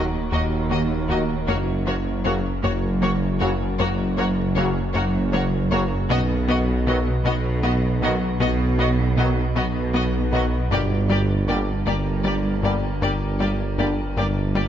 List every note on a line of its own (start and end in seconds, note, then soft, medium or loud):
0.00 1.50 D#1 medium
0.00 0.17 D#2 medium
0.00 0.19 D#2 medium
0.00 1.44 F#3 medium
0.00 1.44 D#4 medium
0.00 1.44 F#4 medium
0.00 1.44 A#4 medium
0.31 1.34 D#2 medium
0.31 0.55 D#2 medium
0.31 1.34 D#2 medium
0.31 0.40 A#3 medium
0.31 0.39 F#4 soft
0.31 0.41 D#5 soft
0.70 0.94 D#3 medium
0.70 0.79 A#3 soft
0.70 0.78 F#4 soft
0.70 0.79 D#5 soft
1.09 1.32 D#2 medium
1.09 1.23 D#3 medium
1.09 1.23 F#3 medium
1.09 1.17 A#3 soft
1.09 1.23 A#3 medium
1.09 1.17 F#4 medium
1.09 1.23 F#4 medium
1.09 1.18 D#5 soft
1.47 2.50 F#1 medium
1.47 6.11 F#1 medium
1.47 1.71 F#2 medium
1.47 2.50 F#2 medium
1.47 6.06 F#3 medium
1.47 1.55 A#3 medium
1.47 6.10 C#4 medium
1.47 1.55 F#4 medium
1.47 6.06 F#4 medium
1.47 6.06 A#4 medium
1.47 1.56 C#5 medium
1.86 2.10 F#3 medium
1.86 1.94 A#3 medium
1.86 1.94 F#4 medium
1.86 1.95 C#5 soft
2.24 2.48 F#2 medium
2.24 2.38 C#3 medium
2.24 2.38 F#3 medium
2.24 2.38 A#3 medium
2.24 2.33 A#3 medium
2.24 2.32 F#4 soft
2.24 2.38 F#4 medium
2.24 2.33 C#5 soft
2.63 3.65 F#1 medium
2.63 2.87 F#2 medium
2.63 3.66 F#2 medium
2.63 2.71 A#3 medium
2.63 2.71 F#4 medium
2.63 2.72 C#5 medium
3.01 3.25 F#3 medium
3.01 3.09 A#3 medium
3.01 3.11 F#4 soft
3.01 3.10 C#5 medium
3.40 3.64 F#2 medium
3.40 3.54 C#3 medium
3.40 3.54 F#3 medium
3.40 3.49 A#3 medium
3.40 3.54 A#3 medium
3.40 3.48 F#4 medium
3.40 3.54 F#4 medium
3.40 3.49 C#5 soft
3.79 4.81 F#1 medium
3.79 4.81 F#2 medium
3.79 4.02 F#2 medium
3.79 3.87 A#3 medium
3.79 3.88 F#4 medium
3.79 3.87 C#5 medium
4.17 4.41 F#3 medium
4.17 4.26 A#3 medium
4.17 4.26 F#4 medium
4.17 4.25 C#5 medium
4.56 4.79 F#2 medium
4.56 4.70 C#3 medium
4.56 4.70 F#3 medium
4.56 4.64 A#3 medium
4.56 4.70 A#3 medium
4.56 4.70 F#4 medium
4.56 4.64 F#4 medium
4.56 4.64 C#5 medium
4.94 5.96 F#1 medium
4.94 5.96 F#2 medium
4.94 5.18 F#2 loud
4.94 5.02 A#3 medium
4.94 5.03 F#4 medium
4.94 5.02 C#5 medium
5.33 5.56 F#3 medium
5.33 5.41 A#3 medium
5.33 5.42 F#4 medium
5.33 5.41 C#5 medium
5.71 5.95 F#2 medium
5.71 5.85 C#3 medium
5.71 5.85 F#3 medium
5.71 5.85 A#3 medium
5.71 5.79 A#3 medium
5.71 5.85 F#4 medium
5.71 5.80 F#4 medium
5.71 5.80 C#5 medium
6.09 7.11 B1 medium
6.09 10.72 B1 medium
6.09 7.12 B1 medium
6.09 7.11 B2 medium
6.09 6.33 B2 medium
6.09 10.67 F#3 medium
6.09 6.17 B3 medium
6.09 10.71 D#4 medium
6.09 6.18 F#4 medium
6.09 10.67 F#4 medium
6.09 10.71 B4 medium
6.09 6.19 D#5 medium
6.48 6.56 B3 medium
6.48 6.71 B3 medium
6.48 6.57 F#4 medium
6.48 6.57 D#5 medium
6.87 7.10 B2 medium
6.87 7.00 D#3 medium
6.87 7.01 F#3 medium
6.87 6.95 B3 medium
6.87 7.01 B3 medium
6.87 6.95 F#4 medium
6.87 7.01 F#4 medium
6.87 6.96 D#5 medium
7.25 8.27 B1 medium
7.25 8.27 B2 medium
7.25 7.48 B2 medium
7.25 7.33 B3 medium
7.25 7.33 F#4 medium
7.25 7.34 D#5 medium
7.63 7.71 B3 medium
7.63 7.86 B3 medium
7.63 7.72 F#4 medium
7.63 7.72 D#5 medium
8.02 8.25 B2 medium
8.02 8.15 D#3 medium
8.02 8.15 F#3 medium
8.02 8.15 B3 medium
8.02 8.10 B3 medium
8.02 8.15 F#4 medium
8.02 8.11 F#4 medium
8.02 8.11 D#5 medium
8.40 9.42 B1 medium
8.40 8.63 B2 medium
8.40 9.42 B2 medium
8.40 8.48 B3 medium
8.40 8.49 F#4 medium
8.40 8.49 D#5 medium
8.79 8.87 B3 medium
8.79 9.02 B3 medium
8.79 8.87 F#4 medium
8.79 8.87 D#5 medium
9.17 9.40 B2 medium
9.17 9.31 D#3 medium
9.17 9.31 F#3 medium
9.17 9.25 B3 medium
9.17 9.31 B3 medium
9.17 9.30 F#4 medium
9.17 9.25 F#4 medium
9.17 9.26 D#5 medium
9.55 10.57 B1 medium
9.55 10.58 B1 medium
9.55 10.57 B2 medium
9.55 9.79 B2 medium
9.55 9.64 B3 medium
9.55 9.64 F#4 medium
9.55 9.64 D#5 medium
9.93 10.01 B3 medium
9.93 10.17 B3 medium
9.93 10.02 F#4 medium
9.93 10.02 D#5 medium
10.32 10.56 B2 medium
10.32 10.46 D#3 medium
10.32 10.46 F#3 medium
10.32 10.40 B3 medium
10.32 10.46 B3 medium
10.32 10.46 F#4 medium
10.32 10.42 F#4 medium
10.32 10.41 D#5 soft
10.71 11.73 G1 medium
10.71 14.68 G1 medium
10.71 10.94 G2 medium
10.71 11.73 G2 medium
10.71 14.68 D3 medium
10.71 10.79 A#3 medium
10.71 14.68 D4 medium
10.71 14.68 G4 medium
10.71 10.80 G4 medium
10.71 14.68 A#4 medium
10.71 10.79 D5 medium
11.09 11.33 G3 medium
11.09 11.18 A#3 soft
11.09 11.19 G4 medium
11.09 11.18 D5 soft
11.47 11.71 G2 medium
11.47 11.61 D3 medium
11.47 11.61 G3 medium
11.47 11.56 A#3 medium
11.47 11.62 A#3 medium
11.47 11.62 D4 medium
11.47 11.56 G4 soft
11.47 11.56 D5 medium
11.86 12.88 G1 medium
11.86 12.10 G2 medium
11.86 12.88 G2 medium
11.86 11.94 A#3 medium
11.86 11.95 G4 medium
11.86 11.95 D5 soft
12.24 12.48 G3 medium
12.24 12.32 A#3 soft
12.24 12.33 G4 soft
12.24 12.33 D5 soft
12.63 12.86 G2 medium
12.63 12.77 D3 medium
12.63 12.77 G3 medium
12.63 12.71 A#3 soft
12.63 12.77 A#3 soft
12.63 12.77 D4 medium
12.63 12.71 G4 soft
12.63 12.72 D5 soft
13.02 14.04 G1 medium
13.02 14.04 G2 medium
13.02 13.25 G2 medium
13.02 13.10 A#3 medium
13.02 13.10 G4 soft
13.02 13.10 D5 medium
13.40 13.63 G3 medium
13.40 13.48 A#3 soft
13.40 13.48 G4 soft
13.40 13.48 D5 soft
13.78 14.02 G2 medium
13.78 13.93 D3 medium
13.78 13.93 G3 soft
13.78 13.92 A#3 soft
13.78 13.87 A#3 soft
13.78 13.92 D4 soft
13.78 13.86 G4 soft
13.78 13.87 D5 soft
14.17 14.68 G1 medium
14.17 14.68 G2 medium
14.17 14.40 G2 medium
14.17 14.26 A#3 soft
14.17 14.25 G4 soft
14.17 14.25 D5 soft
14.55 14.68 G3 medium
14.55 14.64 A#3 soft
14.55 14.63 G4 soft
14.55 14.64 D5 soft